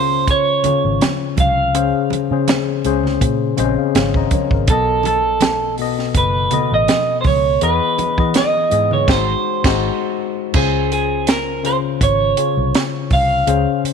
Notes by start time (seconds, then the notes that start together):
Already playing: C#2 C#3 C#4 F4 C5
0.27 C#5, kick, closed hi-hat
0.64 C#3 C#4 F4 C#5, muted fingered electric bass stroke, closed hi-hat, muted conga, low conga
0.85 G#1
1.01 snare, closed hi-hat, high conga
1.37 C2 F5, kick, closed hi-hat, high conga
1.74 C#2 C#3 C#4 G#4 C5, closed hi-hat
2.10 muted fingered electric bass stroke, closed hi-hat, muted conga
2.31 C#3 C#4 G#4 C5
2.48 snare, closed hi-hat, high conga
2.85 C#2 C#3 C#4 G#4 C5, closed hi-hat
3.03 snare, low conga
3.21 A#2, kick, closed hi-hat
3.57 A#1 C#3 C4 G#4 C5 D#5, closed hi-hat, muted conga
3.64 C#4
3.78 F5
3.95 G#1 C#5 F5 G#5, snare, closed hi-hat, high conga
4.14 C5 D#5 A#5, kick
4.31 A#4 C#5, kick, closed hi-hat, high conga
4.51 G#1 A#4, kick
4.67 B1 B2 B3 A4, kick, closed hi-hat, muted conga
4.71 A4 D#5
5.03 A4, closed hi-hat, muted conga
5.41 snare, closed hi-hat, high conga
5.78 B2 B3 A4 D#5, open hi-hat
5.99 snare
6.15 F#1 B4, kick, closed hi-hat
6.51 B2 B3 A4 D#5, closed hi-hat, muted conga, low conga
6.72 A1 D#5
6.88 snare, closed hi-hat, high conga
7.21 C#2 C5, kick, open hi-hat, high conga
7.27 C#5
7.61 E2 E3 B3 G#4 B4 D#5, closed hi-hat
7.98 muted fingered electric bass stroke, closed hi-hat, muted conga
8.18 E3 B3 G#4 D#5, kick
8.34 D#5, snare, closed hi-hat, high conga
8.70 G#2 E3 B3 G#4 D#5, closed hi-hat
8.91 C#5, low conga
9.07 G#1 G#3 D#4 F#4 C5, kick, snare, crash
9.64 G#1 G#3 D#4 F#4 C5, kick, snare, crash
10.53 C#2 C#3 C#4 F4 G#4 C5, kick, crash
10.92 G#4, closed hi-hat
11.27 A#4, snare, closed hi-hat
11.64 C#3 C#4 F4 C5, closed hi-hat
12.01 G#1 C#5, kick, closed hi-hat
12.37 C#3 C#4 F4 C#5, closed hi-hat
12.57 C2
12.75 snare, closed hi-hat
13.10 C2 F5, kick, open hi-hat
13.47 C#2 C#3 C#4 G#4 C5, closed hi-hat
13.84 muted fingered electric bass stroke, closed hi-hat